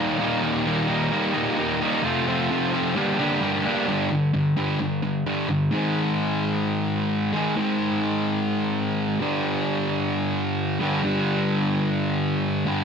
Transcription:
0.00 0.17 D#2 medium
0.00 0.17 A#2 medium
0.00 0.18 D#3 medium
0.00 0.19 G3 medium
0.00 0.19 A#3 medium
0.00 0.19 D#4 medium
0.18 0.64 D#2 medium
0.18 0.65 A#2 medium
0.18 0.42 D#3 loud
0.18 0.42 G3 medium
0.18 0.41 A#3 loud
0.18 0.40 D#4 loud
0.42 0.65 D#3 medium
0.42 0.65 G3 medium
0.42 0.66 A#3 medium
0.42 0.66 D#4 medium
0.65 1.11 D#2 medium
0.65 1.12 A#2 medium
0.65 0.89 D#3 loud
0.65 0.88 G3 medium
0.65 0.88 A#3 loud
0.65 0.87 D#4 loud
0.88 1.10 D#3 medium
0.88 1.11 G3 medium
0.88 1.12 A#3 medium
0.88 1.12 D#4 medium
1.12 1.35 D#3 medium
1.12 1.34 G3 medium
1.12 1.33 A#3 medium
1.12 1.33 D#4 medium
1.34 1.82 D#2 medium
1.34 1.81 A#2 medium
1.34 1.56 D#3 medium
1.34 1.57 G3 medium
1.34 1.58 A#3 medium
1.34 1.58 D#4 medium
1.57 1.82 D#3 medium
1.57 1.81 G3 medium
1.57 1.81 A#3 medium
1.57 1.80 D#4 medium
1.81 2.03 D#3 medium
1.81 2.03 G3 medium
1.81 2.03 A#3 medium
1.81 2.02 D#4 medium
2.02 2.49 F2 medium
2.02 2.49 C3 medium
2.02 2.27 F3 medium
2.02 2.27 A3 medium
2.02 2.26 C4 loud
2.02 2.26 F4 loud
2.27 2.50 F3 medium
2.27 2.50 A3 medium
2.27 2.50 C4 medium
2.27 2.51 F4 medium
2.50 2.95 F2 medium
2.50 2.95 C3 medium
2.50 2.74 F3 medium
2.50 2.72 A3 medium
2.50 2.73 C4 loud
2.50 2.71 F4 loud
2.72 2.95 F3 medium
2.72 2.95 A3 medium
2.72 2.95 C4 medium
2.72 2.94 F4 medium
2.95 3.19 G2 loud
2.95 3.19 D3 loud
2.95 3.19 G3 loud
2.95 3.18 A#3 loud
2.95 3.18 D4 loud
2.95 3.17 G4 loud
3.18 3.66 G2 medium
3.18 3.66 D3 medium
3.18 3.40 G3 medium
3.18 3.42 A#3 medium
3.18 3.42 D4 medium
3.18 3.43 G4 medium
3.42 3.66 G3 medium
3.42 3.66 A#3 medium
3.42 3.65 D4 medium
3.42 3.63 G4 medium
3.64 3.88 G3 medium
3.64 3.87 A#3 medium
3.64 3.87 D4 medium
3.64 3.86 G4 medium
3.88 4.10 G2 medium
3.88 4.10 D3 medium
3.88 4.10 G3 medium
4.11 4.32 G2 medium
4.11 4.32 D3 medium
4.34 4.55 G2 medium
4.34 4.55 D3 medium
4.57 4.79 G2 medium
4.57 4.79 D3 medium
4.57 4.79 G3 medium
4.80 5.01 G2 medium
4.80 5.01 D3 medium
5.03 5.24 G2 medium
5.03 5.24 D3 medium
5.26 5.47 G2 medium
5.26 5.48 D3 medium
5.26 5.49 G3 medium
5.48 5.70 G2 medium
5.48 5.70 D3 medium
5.71 7.33 G#2 medium
5.71 7.33 D#3 medium
5.71 7.31 G#3 medium
7.33 7.55 G#2 medium
7.33 7.56 D#3 medium
7.33 7.56 G#3 medium
7.56 9.18 G#2 medium
7.56 9.18 D#3 medium
7.56 9.19 G#3 medium
9.20 10.78 G2 medium
9.20 10.80 D3 medium
9.20 10.81 G3 medium
10.79 11.02 G2 medium
10.79 11.03 D3 medium
10.79 11.04 G3 medium
11.03 12.64 G2 medium
11.03 12.66 D3 medium
11.03 12.66 G3 medium
12.66 12.84 G2 medium
12.66 12.84 D3 medium
12.66 12.84 G3 medium

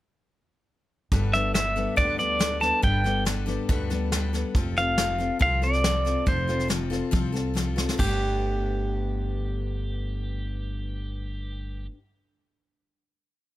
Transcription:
1.12 1.84 G1 medium
1.12 1.33 G2 medium
1.12 1.33 D3 medium
1.12 1.34 G3 medium
1.12 1.33 B3 medium
1.12 1.33 D4 medium
1.12 1.32 A4 medium
1.12 kick loud
1.12 snare soft
1.33 1.53 G3 soft
1.33 1.54 B3 soft
1.33 1.55 D4 soft
1.33 1.55 A4 soft
1.33 1.53 E5 medium
1.33 snare soft
1.54 1.76 G3 medium
1.54 1.75 B3 soft
1.54 1.75 D4 medium
1.54 1.75 A4 medium
1.54 1.94 E5 medium
1.54 snare loud
1.54 hi-hat pedal medium
1.76 1.96 G3 soft
1.76 1.97 B3 soft
1.76 1.97 D4 soft
1.76 1.97 A4 soft
1.76 snare soft
1.96 2.70 D2 medium
1.96 2.18 G2 medium
1.96 2.19 D3 medium
1.96 2.19 G3 medium
1.96 2.18 B3 medium
1.96 2.18 D4 medium
1.96 2.17 A4 medium
1.96 2.17 D5 medium
1.96 kick loud
1.96 snare soft
2.18 2.38 G3 soft
2.18 2.38 B3 soft
2.18 2.40 D4 soft
2.18 2.40 A4 soft
2.18 2.63 D5 medium
2.18 snare soft
2.39 2.61 G3 medium
2.39 2.61 B3 medium
2.39 2.61 D4 medium
2.39 2.59 A4 medium
2.39 snare loud
2.39 hi-hat pedal medium
2.61 2.81 G3 soft
2.61 2.81 B3 soft
2.61 2.83 D4 soft
2.61 2.82 A4 soft
2.61 2.83 A5 medium
2.61 snare soft
2.82 3.56 G1 medium
2.82 3.04 G2 medium
2.82 3.04 D3 medium
2.82 3.04 G3 medium
2.82 3.04 B3 medium
2.82 3.03 D4 medium
2.82 3.03 A4 medium
2.82 3.23 G5 medium
2.82 kick medium
2.82 snare soft
3.04 3.24 G3 soft
3.04 3.25 B3 soft
3.04 3.25 D4 soft
3.04 3.26 A4 soft
3.04 snare soft
3.25 3.47 G3 soft
3.25 3.47 B3 medium
3.25 3.45 D4 medium
3.25 3.45 A4 medium
3.25 snare medium
3.25 hi-hat pedal medium
3.46 3.68 G3 soft
3.46 3.69 B3 soft
3.46 3.69 D4 soft
3.46 3.68 A4 medium
3.46 snare soft
3.69 4.42 D2 medium
3.69 3.90 G2 medium
3.69 3.90 D3 medium
3.69 3.90 G3 medium
3.69 3.90 B3 medium
3.69 3.89 D4 medium
3.69 3.89 A4 medium
3.69 kick loud
3.69 snare soft
3.90 4.11 G3 medium
3.90 4.11 B3 soft
3.90 4.12 D4 medium
3.90 4.12 A4 medium
3.90 snare soft
4.12 4.33 G3 medium
4.12 4.33 B3 medium
4.12 4.33 D4 medium
4.12 4.32 A4 medium
4.12 snare medium
4.12 hi-hat pedal medium
4.33 4.55 G3 soft
4.33 4.55 B3 soft
4.33 4.55 D4 medium
4.33 4.55 A4 soft
4.33 snare soft
4.55 5.28 F1 medium
4.55 4.77 F3 medium
4.55 4.77 C4 medium
4.55 4.76 F4 medium
4.55 4.75 A4 medium
4.55 kick loud
4.55 snare soft
4.76 4.97 C4 soft
4.76 4.98 F4 soft
4.76 4.98 A4 soft
4.76 5.37 F5 medium
4.76 snare soft
4.97 5.19 F3 soft
4.97 5.19 C4 medium
4.97 5.18 F4 medium
4.97 5.17 A4 medium
4.97 snare loud
4.97 hi-hat pedal medium
5.18 5.38 C4 soft
5.18 5.39 F4 soft
5.18 5.40 A4 soft
5.18 snare soft
5.39 6.14 C2 medium
5.39 5.61 F3 medium
5.39 5.62 C4 medium
5.39 5.62 F4 medium
5.39 5.61 A4 medium
5.39 5.64 F5 medium
5.39 kick medium
5.39 snare soft
5.62 5.84 C4 soft
5.62 5.84 F4 soft
5.62 5.83 A4 medium
5.62 6.29 D5 medium
5.62 snare soft
5.73 snare soft
5.84 6.05 F3 soft
5.84 6.05 C4 medium
5.84 6.05 F4 medium
5.84 6.03 A4 medium
5.84 snare loud
5.84 hi-hat pedal medium
6.05 6.25 C4 soft
6.05 6.26 F4 soft
6.05 6.26 A4 soft
6.05 snare soft
6.26 7.00 F1 medium
6.26 6.48 F3 medium
6.26 6.48 C4 medium
6.26 6.47 F4 medium
6.26 6.46 A4 medium
6.26 6.68 C5 medium
6.26 kick loud
6.26 snare soft
6.48 6.68 C4 soft
6.48 6.69 F4 soft
6.48 6.69 A4 soft
6.48 snare soft
6.60 snare soft
6.68 6.90 F3 medium
6.68 6.91 C4 medium
6.68 6.90 F4 medium
6.68 6.89 A4 medium
6.68 snare medium
6.68 hi-hat pedal medium
6.90 7.11 C4 soft
6.90 7.11 F4 soft
6.90 7.12 A4 medium
6.90 snare soft
7.11 7.86 C2 medium
7.11 7.33 F3 medium
7.11 7.33 C4 medium
7.11 7.32 F4 medium
7.11 7.31 A4 medium
7.11 kick loud
7.11 snare soft
7.32 7.54 C4 soft
7.32 7.54 F4 soft
7.32 7.55 A4 medium
7.32 snare soft
7.54 7.76 F3 medium
7.54 7.77 C4 medium
7.54 7.75 F4 medium
7.54 7.75 A4 medium
7.54 snare medium
7.54 hi-hat pedal medium
7.76 7.99 C4 soft
7.76 7.98 F4 soft
7.76 7.98 A4 medium
7.76 snare medium
7.89 snare medium
7.93 11.83 G2 medium
7.98 11.85 G1 medium
7.98 11.88 D3 medium
7.98 11.91 A3 medium
7.98 11.86 G4 medium
7.98 kick medium
7.98 crash medium
8.04 11.94 B3 medium
8.04 11.97 D4 medium
8.10 12.01 G4 medium

